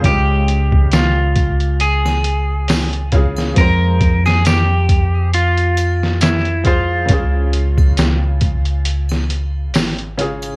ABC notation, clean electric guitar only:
X:1
M:4/4
L:1/16
Q:"Swing 16ths" 1/4=68
K:Dblyd
V:1 name="Clean electric guitar"
G4 F4 A6 z2 | B3 A G4 F4 =E2 F2- | F12 z4 |]